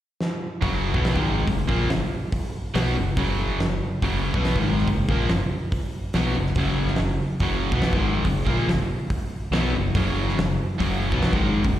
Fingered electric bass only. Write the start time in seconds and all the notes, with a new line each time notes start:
0.62 F#1
0.94 B1
1.16 G#1
1.47 F#1
1.68 A#1
1.90 F#1
2.75 B1
2.97 F#1
3.16 F#1
3.59 F#1
4.02 F#1
4.34 B1
4.56 G#1
4.87 F#1
5.08 A#1
5.29 F#1
6.14 B1
6.37 F#1
6.56 F#1
6.99 F#1
7.40 F#1
7.71 B1
7.92 G#1
8.24 F#1
8.47 A#1
8.67 F#1
9.51 B1
9.73 F#1
9.95 F#1
10.38 F#1
10.80 F#1
11.11 B1
11.33 G#1
11.65 F#1